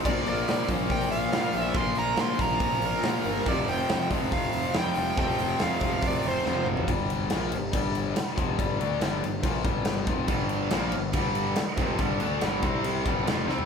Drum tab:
CC |x---------------|----------------|----------------|----------------|
HH |--o-o-o-o-o-o-o-|o-o-o-o-o-o-o-o-|o-o-o-o-o-o-o-o-|o-o-o-o-o-o-----|
SD |-o--o-------o--o|----o-------o--o|----o-------o---|----o-------o---|
T1 |----------------|----------------|----------------|-------------o--|
T2 |----------------|----------------|----------------|--------------o-|
FT |----------------|----------------|----------------|---------------o|
BD |o-----o-o-------|o-----o-o-------|o-----o-o-------|o-----o-o-------|

CC |x-x-x-x-x-x-x-x-|x-x-x-x-x-x-x-x-|x-x-x-x-x-x-x-x-|x-x-x-x-x-x-x---|
HH |----------------|----------------|----------------|----------------|
SD |----o-------oo--|----o-------o---|----o-------oo--|----o-------o-o-|
T1 |----------------|----------------|----------------|----------------|
T2 |----------------|----------------|----------------|----------------|
FT |----------------|----------------|----------------|---------------o|
BD |o-------o-----o-|o-------o-o---o-|o-------o-----o-|o-----o---o-----|